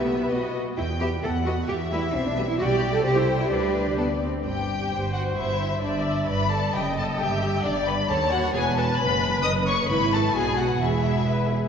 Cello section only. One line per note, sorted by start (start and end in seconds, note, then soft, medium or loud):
0.00 0.53 B3 soft
0.78 0.86 E4 medium
1.00 1.08 G4 medium
1.23 1.31 A4 medium
1.45 1.53 F#4 medium
1.69 1.77 G4 medium
1.91 2.14 E4 medium
2.14 2.26 C4 medium
2.26 2.48 D4 medium
2.48 2.59 E4 medium
2.59 2.63 F#4 medium
2.71 2.93 G4 medium
2.93 3.04 A4 medium
3.04 3.16 G4 medium
3.16 3.39 E4 medium
3.40 3.51 E4 medium
3.51 3.97 D4 medium
4.46 4.87 G2 soft
4.92 5.33 G2 soft
5.38 5.78 G2 soft
5.83 6.24 G2 soft
6.30 6.70 G2 soft
6.76 7.15 F#2 soft
7.21 7.60 G2 medium
7.66 8.05 G2 soft
8.10 8.49 D#2 medium
8.55 8.94 E2 medium
9.00 9.39 F#2 medium
9.44 9.84 F#2 medium
9.89 10.31 G#2 medium
10.35 10.80 B2 soft
10.81 11.53 E2 soft